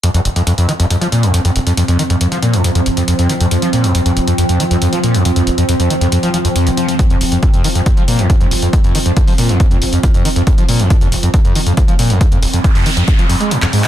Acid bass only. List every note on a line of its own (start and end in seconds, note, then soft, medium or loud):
0.03 0.09 F2 medium
0.14 0.20 F2 loud
0.25 0.29 F1 medium
0.36 0.42 F2 medium
0.47 0.53 F2 medium
0.58 0.67 F2 medium
0.69 0.72 D#3 medium
0.80 0.86 F2 loud
0.90 0.96 F2 medium
1.01 1.07 F3 medium
1.12 1.25 A#2 medium
1.23 1.32 F2 medium
1.34 1.40 F2 medium
1.45 1.51 F2 loud
1.56 1.59 F1 medium
1.67 1.73 F2 medium
1.77 1.83 F2 medium
1.88 1.97 F2 medium
1.99 2.03 D#3 medium
2.10 2.16 F2 loud
2.21 2.27 F2 medium
2.32 2.38 F3 medium
2.42 2.55 A#2 medium
2.54 2.62 F2 medium
2.64 2.70 F2 medium
2.75 2.81 F2 loud
2.86 2.90 F1 medium
2.97 3.03 F2 medium
3.08 3.14 F2 medium
3.19 3.28 F2 medium
3.30 3.33 D#3 medium
3.41 3.47 F2 loud
3.51 3.57 F2 medium
3.62 3.68 F3 medium
3.73 3.85 A#2 medium
3.84 3.93 F2 medium
3.95 4.01 F2 medium
4.06 4.12 F2 loud
4.17 4.20 F1 medium
4.28 4.33 F2 medium
4.38 4.44 F2 medium
4.49 4.58 F2 medium
4.60 4.64 D#3 medium
4.71 4.77 F2 loud
4.82 4.88 F2 medium
4.93 4.99 F3 medium
5.04 5.16 A#2 medium
5.14 5.23 F2 medium
5.25 5.31 F2 medium
5.36 5.42 F2 loud
5.47 5.51 F1 medium
5.58 5.64 F2 medium
5.69 5.75 F2 medium
5.80 5.89 F2 medium
5.90 5.94 D#3 medium
6.01 6.07 F2 loud
6.12 6.18 F2 medium
6.23 6.29 F3 medium
6.34 6.38 F3 medium
6.45 6.48 F2 medium
6.56 6.68 F2 medium
6.67 6.70 F1 medium
6.77 6.86 F3 medium
6.88 6.94 F3 medium
6.99 7.05 F2 medium
7.10 7.16 F2 loud
7.21 7.25 F1 medium
7.32 7.38 F2 medium
7.43 7.49 F2 medium
7.54 7.62 F2 medium
7.64 7.68 D#3 medium
7.75 7.81 F2 loud
7.86 7.92 F2 medium
7.97 8.03 F3 medium
8.08 8.20 A#2 medium
8.19 8.28 F2 medium
8.40 8.46 F2 loud
8.51 8.55 F1 medium
8.62 8.68 F2 medium
8.73 8.79 F2 medium
8.84 8.93 F2 medium
8.95 8.98 D#3 medium
9.06 9.12 F2 loud
9.17 9.23 F2 medium
9.27 9.33 F3 medium
9.38 9.51 A#2 medium
9.49 9.58 F2 medium
9.71 9.77 F2 loud
9.82 9.85 F1 medium
9.93 9.99 F2 medium
10.03 10.09 F2 medium
10.14 10.23 F2 medium
10.25 10.29 D#3 medium
10.36 10.42 F2 loud
10.47 10.53 F2 medium
10.58 10.64 F3 medium
10.69 10.81 A#2 medium
10.80 10.89 F2 medium
10.90 10.96 F2 medium
11.01 11.07 F2 loud
11.12 11.16 F1 medium
11.23 11.29 F2 medium
11.34 11.40 F2 medium
11.45 11.54 F2 medium
11.56 11.59 D#3 medium
11.66 11.72 F2 loud
11.77 11.83 F2 medium
11.88 11.94 F3 medium
11.99 12.11 A#2 medium
12.10 12.19 F2 medium
12.21 12.27 F2 medium
12.32 12.38 F2 loud
12.42 12.46 F1 medium
12.53 12.59 F2 medium
12.64 12.70 F2 medium
12.75 12.84 F2 medium
12.86 12.90 D#3 medium
12.97 13.03 F2 loud
13.08 13.14 F2 medium
13.19 13.25 F3 medium
13.29 13.36 F2 medium
13.40 13.53 G#3 medium
13.51 13.57 G#2 loud
13.62 13.66 F2 loud
13.73 13.85 G#2 loud
13.84 13.88 F3 medium